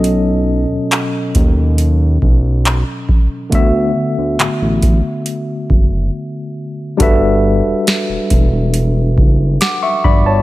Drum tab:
HH |x-xxx-x-|x-xxx---|x-xxx-x-|
CP |--x---x-|--x-----|--------|
SD |--------|--------|--o---o-|
BD |---o-o-o|o--o-o--|o--o-o-o|